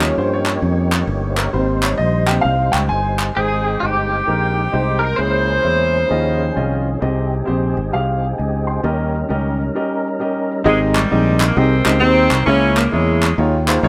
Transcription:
Already playing: fingered electric bass D#2, tonewheel organ A#3 D#4 G4 C#5
0.00 grand piano F3 G3 C#4 C#5, clap
0.18 fingered electric bass G2, grand piano C5
0.33 grand piano C#5
0.46 clap
0.62 fingered electric bass F2
0.92 clap
1.07 fingered electric bass G1
1.30 grand piano C5
1.37 grand piano A#4, clap
1.53 fingered electric bass G#1, grand piano G3 A#3 C4 C5, tonewheel organ G3 D#4 B4
1.59 tonewheel organ C5
1.83 grand piano C#5, clap
1.98 fingered electric bass A#1, grand piano D#5
2.27 grand piano G3 A#3 C4 G5, clap
2.41 fingered electric bass C2, grand piano F5
2.72 fingered electric bass C#2, grand piano G5, clap
2.89 fingered electric bass G1, grand piano G#5
3.19 clap
3.35 fingered electric bass G#1, grand piano G#2 G#3 D#4 G4 C5, tonewheel organ G#3 D#4 C5 G5, saxophone section C4 D#4 G#4, clean electric guitar G#4
3.80 fingered electric bass G1, grand piano G#3 D#4 G4 C5, saxophone section C4 D#4, clean electric guitar G4
3.84 saxophone section G4
4.26 fingered electric bass A#1, grand piano G#3 D#4 G4 A#4
4.72 fingered electric bass C2, grand piano G#3 D#4 G4 C5
4.99 clean electric guitar A#4
5.03 saxophone section A#4
5.16 fingered electric bass C#2, grand piano C#3 A#3 E4 G#4 C#5, tonewheel organ G#3 C#4 E4 G#4, saxophone section E4 G#4 C5, clean electric guitar C5
5.24 tonewheel organ A#4
5.63 fingered electric bass E2, grand piano A#3 E4 G#4 C#5
6.09 fingered electric bass D#2, grand piano D#3 C#4 F4 G#4 D#5, tonewheel organ D#3 F3 C#4 G#4
6.56 fingered electric bass C2, grand piano C#4 F4 G#4 D#5
7.01 fingered electric bass C2, grand piano C3 C4 G4 G#4 D#5, tonewheel organ B3 D#4 G4 G#4
7.08 tonewheel organ C4
7.45 fingered electric bass A#1, grand piano C4 G4 G#4 C5
7.77 fingered electric bass G#1
7.92 fingered electric bass C2, grand piano C4 G4 G#4 F5
8.38 fingered electric bass C#2, grand piano D#5 G#5
8.67 grand piano G5 C6
8.83 fingered electric bass D#2, grand piano D#3 C#4 G4 A#4 D#5, tonewheel organ G3 C#4 D#4 A#4
9.29 fingered electric bass C#2, grand piano C#4 G4 A#4 D#5
9.75 grand piano C#4 G4 A#4 D#5
10.19 grand piano C#4 G4 A#4 D#5
10.64 fingered electric bass G#1, grand piano G#2 C4 D#4 G4 G#4 D#5, saxophone section C3 D#3 G#3
10.95 saxophone section C3 D#3 G3, clap
11.10 fingered electric bass A#1, grand piano C4 D#4 G4 G#4 D#5
11.40 clap
11.47 saxophone section A#3
11.55 fingered electric bass C2, saxophone section D#3 G3 C4, grand piano C4 D#4 G4 G#4 D#5
11.85 fingered electric bass C#2, grand piano C4 D#4 G4 G#4 D#5, clap
12.00 fingered electric bass D#2, saxophone section D#3 G3 C4, grand piano C4 D#4 G4 G#4 C5
12.31 fingered electric bass C2, clap
12.45 fingered electric bass C#2, grand piano C#3 A#3 C#4 E4 G#4 C#5, saxophone section E3 A#3 C#4
12.76 saxophone section A#3, clap
12.91 fingered electric bass E2, saxophone section E3 G#3, grand piano A#3 C#4 E4 G#4 C#5
13.23 clap
13.38 fingered electric bass D#2, grand piano D#3 A#3 D#4 F4 G#4 C#5
13.66 grand piano A#3 D#4 F4 G#4 C5, clap
13.83 fingered electric bass A#1, grand piano A#3 D#4 F4 G#4 C#5

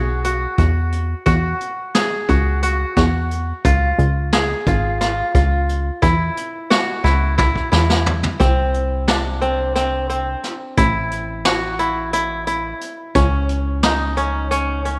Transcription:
Already playing: analog synth bass B1, kora F#4 G#4
0.24 kora F#4, closed hi-hat
0.58 analog synth bass E2, kora F#4, kick, closed hi-hat
0.92 closed hi-hat
1.26 analog synth bass E2, kora F#4, kick, closed hi-hat
1.60 closed hi-hat
1.95 kora G#4, snare, closed hi-hat
2.29 analog synth bass C#2, kora F#4, kick, closed hi-hat
2.63 kora F#4, closed hi-hat
2.96 analog synth bass E2, kora F#4, kick, snare, closed hi-hat
3.31 closed hi-hat
3.65 analog synth bass C#2, kora F4, kick, closed hi-hat
3.98 analog synth bass C#2, closed hi-hat
4.33 kora G#4, snare, closed hi-hat
4.66 analog synth bass G#1, kora F4, kick, closed hi-hat
5.01 kora F4, snare, closed hi-hat
5.35 analog synth bass C#2, kora F4, kick, closed hi-hat
5.69 closed hi-hat
6.02 analog synth bass E2, kora E4, kick, closed hi-hat
6.37 closed hi-hat
6.70 kora F#4, snare, closed hi-hat
7.04 analog synth bass C#2, kora E4, snare, closed hi-hat
7.38 kora E4, kick, high tom
7.55 kick
7.72 analog synth bass E2, kora E4, snare
7.90 snare
8.06 floor tom
8.23 floor tom
8.40 analog synth bass C2, kora C4, kick, closed hi-hat
8.74 closed hi-hat
9.08 kora D4, snare, closed hi-hat
9.42 kora C4, closed hi-hat
9.76 kora C4, snare, closed hi-hat
10.10 kora C4, closed hi-hat
10.44 snare, closed hi-hat
10.77 analog synth bass A1, kora E4, kick, closed hi-hat
11.11 closed hi-hat
11.45 kora F#4, snare, closed hi-hat
11.79 kora E4, closed hi-hat
12.13 kora E4, closed hi-hat
12.47 kora E4, closed hi-hat
12.81 closed hi-hat
13.15 analog synth bass C#2, kora C#4, kick, closed hi-hat
13.49 closed hi-hat
13.83 kora D#4, snare, closed hi-hat
14.17 kora C#4, closed hi-hat
14.51 kora C#4, closed hi-hat
14.85 kora C#4, closed hi-hat

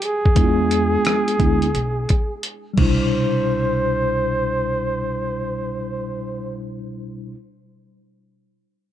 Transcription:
0.02 flugelhorn G#4, closed hi-hat
0.26 upright bass F2, kick
0.35 upright bass E2, tine electric piano G#3 B3 D4 E4, kick, closed hi-hat
0.44 tine electric piano F4
0.71 closed hi-hat
1.05 cross-stick, closed hi-hat
1.28 closed hi-hat
1.39 upright bass D2, tine electric piano G#3 B3 D4 E4, kick, closed hi-hat
1.62 closed hi-hat
1.74 upright bass B1, closed hi-hat
2.09 kick, closed hi-hat
2.43 closed hi-hat
2.74 tine electric piano B2 G3, crash
2.78 upright bass C2, tine electric piano D4 E4, flugelhorn C5, kick

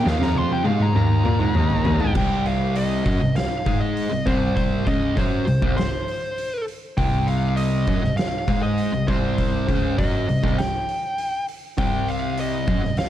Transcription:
0.04 distorted electric guitar D#2 D#3, cello D#2, lead electric guitar F5, snare
0.19 distorted electric guitar F2 F3, cello F2, lead electric guitar A#5, snare
0.35 lead electric guitar C6, high tom
0.50 lead electric guitar G5, high tom
0.64 distorted electric guitar G#2 G#3, cello G#2, lead electric guitar F5, high tom
0.80 lead electric guitar A#5, mid tom
0.95 distorted electric guitar D#2 D#3, cello D#2, lead electric guitar A#5, mid tom
1.10 mid tom
1.25 distorted electric guitar A#2 A#3, cello A#2, mid tom
1.40 distorted electric guitar G#2 G#3, cello G#2, mid tom
1.55 cello D#2, distorted electric guitar D#2 D#3, mid tom
1.70 floor tom
1.85 distorted electric guitar D#2 D#3, cello D#2, floor tom
2.00 cello G#2, distorted electric guitar G#2 G#3, floor tom
2.15 cello C2, distorted electric guitar C2 C3, lead electric guitar G5, kick, crash
2.46 lead electric guitar F5, open hi-hat
2.76 lead electric guitar D#5, open hi-hat
3.05 distorted electric guitar F#2 F#3, cello F#2, kick, open hi-hat
3.21 distorted electric guitar C2, cello C2
3.36 lead electric guitar F5, snare, open hi-hat
3.66 distorted electric guitar G#2 G#3, cello G#2, kick, open hi-hat
3.81 lead electric guitar D#5
3.97 open hi-hat
4.10 distorted electric guitar C2, cello C2
4.26 distorted electric guitar C2 C3, cello C2, lead electric guitar C5, kick, open hi-hat
4.56 lead electric guitar C5, kick, open hi-hat
4.86 distorted electric guitar C#2 C#3, cello C#2, lead electric guitar D#5, kick, open hi-hat
5.17 distorted electric guitar F#2 F#3, cello F#2, lead electric guitar C5, kick, open hi-hat
5.46 distorted electric guitar C2, cello C2, open hi-hat
5.62 cello C2, distorted electric guitar C2 C3, kick
5.77 lead electric guitar C5, snare, open hi-hat
6.08 open hi-hat
6.38 open hi-hat
6.68 open hi-hat
6.97 distorted electric guitar C2 C3, cello C2, lead electric guitar G5, kick, open hi-hat
7.27 lead electric guitar F5, open hi-hat
7.57 lead electric guitar D#5, open hi-hat
7.87 distorted electric guitar F#2 F#3, cello F#2, kick, open hi-hat
8.03 cello C2, distorted electric guitar C2, snare
8.17 lead electric guitar F5, snare, open hi-hat
8.48 distorted electric guitar G#2 G#3, cello G#2, kick, open hi-hat
8.63 lead electric guitar D#5
8.78 open hi-hat
8.93 cello C2, distorted electric guitar C2
9.07 distorted electric guitar C2 C3, cello C2, lead electric guitar C5, kick, open hi-hat
9.38 kick, open hi-hat
9.68 distorted electric guitar C#2 C#3, cello C#2, kick, open hi-hat
9.98 distorted electric guitar F#2 F#3, cello F#2, lead electric guitar D#5, kick, open hi-hat
10.28 distorted electric guitar C2, cello C2, open hi-hat
10.43 distorted electric guitar C2 C3, cello C2, kick, snare
10.58 lead electric guitar G5, snare, open hi-hat
10.89 open hi-hat
11.18 open hi-hat
11.48 open hi-hat
11.78 distorted electric guitar C2 C3, cello C2, lead electric guitar G5, kick, open hi-hat
12.08 lead electric guitar F5, open hi-hat
12.38 lead electric guitar D#5, open hi-hat
12.67 distorted electric guitar F#2 F#3, cello F#2, kick, open hi-hat
12.82 distorted electric guitar C2, cello C2, snare
12.97 lead electric guitar F5, snare, open hi-hat

